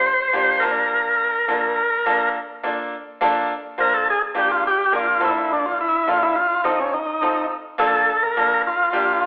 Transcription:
Already playing: C5
0.33 A#3 D4 F4 G4
0.60 A#3 C4 F4 A#4 A5
0.68 D4
1.48 A#3 D4 F4 A4
2.06 A#3 D4 F4 A4
2.63 A#3 D4 F4 A4
3.21 A#3 D4 F4 A4
3.78 A#3 D4 F4 A#4 C5
3.94 A4
4.10 G#4
4.35 A#3 D4 F4 G4
4.51 F4
4.67 G4
4.92 A#3 D4 F4 A#4
5.20 A#3 C4 F4 A4
5.24 D4 E4
5.52 D4
5.66 F4
5.81 E4
6.07 A#3 D4 F4 A4
6.23 E4
6.36 F4
6.64 C4 D#4 F4 A4
6.80 C#4
6.93 D#4
7.22 C4 D#4 F4 A4
7.78 A#3 D4 F4 A4
8.23 A#4
8.37 A#3 D4 F4 A4
8.67 F4
8.93 A#3 D4 F4 G4

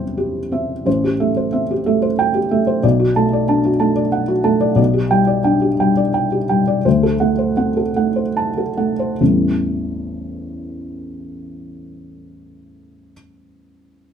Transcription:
Already playing: A1 E2 G3 C4 G4 C5 E5 G5
0.18 G4
0.52 C4 E5
0.86 A1 C5
1.04 G4
1.20 A3 E5
1.37 C5
1.53 C4 E5
1.71 G4
1.86 A3 E5
2.02 C5
2.19 G5
2.35 G4
2.51 A3 E5
2.67 C5
2.83 B1 D5
3.00 F#4
3.16 A3 A5
3.33 D5
3.48 D4 A5
3.65 F#4
3.80 A3 A5
3.96 D5
4.12 F#5
4.28 F#4
4.44 A3 A5
4.61 D5
4.76 B1 D5
4.94 G4
5.11 G3 G5
5.27 D5
5.44 D4 G5
5.62 G4
5.80 G3 G5
5.97 D5
6.14 G5
6.32 G4
6.49 G3 G5
6.68 D5
6.85 D2 C5
7.03 A4
7.20 A3 F#5
7.38 C5
7.57 C4 F#5
7.77 A4
7.96 A3 F#5
8.16 C5
8.37 A5
8.58 A4
8.77 A3 F#5
8.99 C5
9.21 A1 E2 E3 G3 A3 C4

